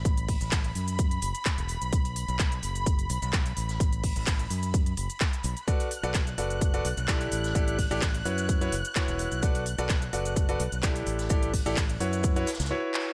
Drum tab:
HH |x-x-o-x-x-x-o-x-x-x-o-x-x-x-o-x-|x-x-o-x-x-x-o-x-x-x-o-x-x-x-o-x-|x-x-o-x-x-x-o-x-x-x-o-x-x-x-o-x-|x-x-o-x-x-x-o-x-x-x-o-x-x-x-o-x-|
SH |x-x---x-x-x-x-x-x-x-x-x-x-x-x-x-|x-x-x-x-x-x-x-x-x-x-x-x-x-x-x-x-|x-x---x-x-x-x-x-x-x-x-x-x-x-x-x-|x-x-x-x-x-x-x-x-x-x-x-x-x-x-x-x-|
CP |--------x---------------x-------|--------x---------------x-------|--------x---------------x-------|--------x---------------x-------|
SD |--------o---------------o-------|--------o---------------o-----o-|--------o---------------o-------|--------o---------------o-----o-|
BD |o---o---o-------o-------o-------|o-------o-------o-------o-------|o---o---o-------o-------o-------|o-------o-------o-------o-------|

HH |x-x-o-x-x-x-o-x-x-x-o-x-x-x-o-x-|x-x-o-x-x-x-o-x-x-x-o-x-x-x-o-x-|x-x-o-x-x-x-o-x-x-x-o-x---------|
SH |x-x---x-x-x-x-x-x-x-x-x-x-x-x-x-|x-x-x-x-x-x-x-x-x-x-x-x-x-x-x-x-|x-x---x-x-x-x-x-x-x-xxxx--------|
CP |--------x---------------x-------|--------x---------------x-------|--------x-------------------x---|
SD |--------o---------------o-------|--------o---------------o-----o-|--------o-----------oooo--------|
BD |o---o---o-------o-------o-------|o-------o-------o-------o-------|o---o---o-------o---------------|